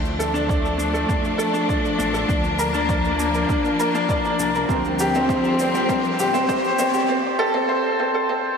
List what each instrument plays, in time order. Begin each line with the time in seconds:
Already playing: detuned saw bass D2, string section F3 A3 D4, riser
0.05 shaker
0.19 upright piano A4, shaker
0.34 upright piano D4, shaker
0.48 upright piano D5, kick, shaker
0.65 shaker
0.78 upright piano D4, shaker
0.93 upright piano A4, shaker
1.08 detuned saw bass F2, upright piano D4, kick, shaker
1.25 shaker
1.38 upright piano A4, shaker
1.53 upright piano D4, shaker
1.69 upright piano D5, kick, shaker
1.85 shaker
1.98 detuned saw bass A1, upright piano D4, shaker
2.13 upright piano A4, shaker
2.28 detuned saw bass D2, string section A#3, upright piano D4, kick, shaker
2.44 shaker
2.59 upright piano A#4, shaker
2.74 upright piano D4, shaker
2.89 upright piano D5, kick, shaker
3.04 shaker
3.19 upright piano D4, shaker
3.34 upright piano A#4, shaker
3.49 upright piano D4, kick, shaker
3.65 shaker
3.80 upright piano A#4, shaker
3.95 upright piano D4, shaker
4.09 upright piano D5, kick, shaker
4.25 shaker
4.39 detuned saw bass C2, upright piano D4, shaker
4.55 upright piano A#4, shaker
4.69 detuned saw bass D2, string section F3 G3 C4, upright piano C4, kick, shaker
4.85 shaker
4.99 upright piano G4, shaker
5.15 upright piano C4, shaker
5.29 upright piano C5, kick, shaker
5.44 shaker
5.59 upright piano C4, shaker
5.75 upright piano G4, shaker
5.89 upright piano C4, kick, shaker
6.04 shaker
6.19 detuned saw bass D1, upright piano G4, shaker
6.34 upright piano C4, shaker
6.49 upright piano C5, kick, shaker
6.64 shaker
6.79 detuned saw bass A1, upright piano C4, shaker
6.94 upright piano G4, shaker
7.09 upright piano C4
7.39 upright piano A4
7.54 upright piano C4
7.69 upright piano C5
8.00 upright piano C4
8.14 upright piano A4
8.29 upright piano C4